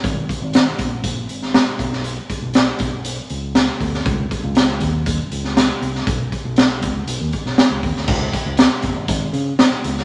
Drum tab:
CC |----------------|----------------|----------------|----------------|
HH |x-x-x-x-x-x-x-x-|x-x-x-x-x-x-x-o-|x-x-x-x-x-x-x-x-|x-x-x-x-x-x-x-o-|
SD |----o------oo--o|----o-------o--o|----o------oo--o|----o------oo--o|
BD |o-o---o-o-----o-|--o---o-------o-|o-o---o-o-------|o-o---o---o---o-|

CC |x---------------|
HH |--x-x-x-x-x-x-x-|
SD |----o-------o--o|
BD |o-o---o-o-------|